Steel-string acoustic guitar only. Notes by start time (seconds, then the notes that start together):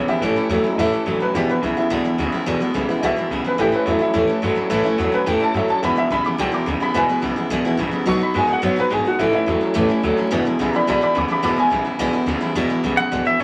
0.08 E3 G#3 B3 E4
0.22 A2 E3 A3 C#4 E4
0.36 A3 C#4 E4
0.50 E3 A3 C#4 E4
0.64 A3 C#4 E4
0.79 A2 E3 A3 C#4 E4
0.92 A3 C#4 E4
1.06 E3 A3 C#4 E4
1.20 A3 C#4 E4
1.35 E2 B2 E3 G#3 B3 E4
1.49 E3 G#3 B3 E4
1.63 E3 G#3 B3 E4
1.77 E3 G#3 B3 E4
1.90 E2 B2 E3 G#3 B3 E4
2.05 E3 G#3 B3 E4
2.18 E3 G#3 B3 E4
2.32 E3 G#3 B3 E4
2.46 E2 B2 E3 G#3 B3 E4
2.60 E3 G#3 B3 E4
2.74 E3 G#3 B3 E4
2.89 E3 G#3 B3 E4
3.03 E2 B2 E3 G#3 B3 E4
3.16 E3 G#3 B3 E4
3.31 E3 G#3 B3 E4
3.44 E3 G#3 B3 E4
3.58 A2 E3 A3 C#4 E4
3.72 A3 C#4 E4
3.86 E3 A3 C#4 E4
3.99 A3 C#4 E4
4.14 A2 E3 A3 C#4 E4
4.28 A3 C#4 E4
4.42 E3 A3 C#4 E4
4.55 A3 C#4 E4
4.70 A2 E3 A3 C#4 E4
4.84 A3 C#4 E4
4.98 E3 A3 C#4 E4
5.12 A3 C#4 E4
5.26 A2 E3 A3 C#4 E4
5.40 A3 C#4 E4
5.54 E3 A3 C#4 E4
5.68 A3 C#4 E4
5.83 E2 B2 E3 G#3 B3 E4
5.96 E3 G#3 B3 E4
6.10 E3 G#3 B3 E4
6.25 E3 G#3 B3 E4
6.38 E2 B2 E3 G#3 B3 E4
6.52 E3 G#3 B3 E4
6.66 E3 G#3 B3 E4
6.80 E3 G#3 B3 E4
6.94 E2 B2 E3 G#3 B3 E4
7.09 E3 G#3 B3 E4
7.22 E3 G#3 B3 E4
7.36 E3 G#3 B3 E4
7.50 E2 B2 E3 G#3 B3 E4
7.65 E3 G#3 B3 E4
7.77 E3 G#3 B3 E4
7.91 E3 G#3 B3 E4
8.06 B2 F#3 B3 D#4 F#4
8.20 B3 D#4 F#4
8.34 F#3 B3 D#4 F#4
8.47 B3 D#4 F#4
8.62 B2 F#3 B3 D#4 F#4
8.76 B3 D#4 F#4
8.90 F#3 B3 D#4 F#4
9.05 B3 D#4 F#4
9.19 A2 E3 A3 C#4 E4
9.33 A3 C#4 E4
9.46 E3 A3 C#4 E4
9.61 A3 C#4 E4
9.74 A2 E3 A3 C#4 E4
9.89 A3 C#4 E4
10.03 E3 A3 C#4 E4
10.17 A3 C#4 E4
10.31 E2 B2 E3 G#3 B3 E4
10.45 E3 G#3 B3 E4
10.59 E3 G#3 B3 E4
10.73 E3 G#3 B3 E4
10.87 E2 B2 E3 G#3 B3 E4
11.01 E3 G#3 B3 E4
11.15 E3 G#3 B3 E4
11.28 E3 G#3 B3 E4
11.42 E2 B2 E3 G#3 B3 E4
11.56 E3 G#3 B3 E4
11.70 E3 G#3 B3 E4
11.84 E3 G#3 B3 E4
11.99 E2 B2 E3 G#3 B3 E4
12.13 E3 G#3 B3 E4
12.26 E3 G#3 B3 E4
12.41 E3 G#3 B3 E4
12.55 E2 B2 E3 G#3 B3 E4
12.69 E3 G#3 B3 E4
12.84 E3 G#3 B3 E4
12.97 E3 G#3 B3 E4
13.12 E2 B2 E3 G#3 B3 E4
13.25 E3 G#3 B3 E4
13.40 E3 G#3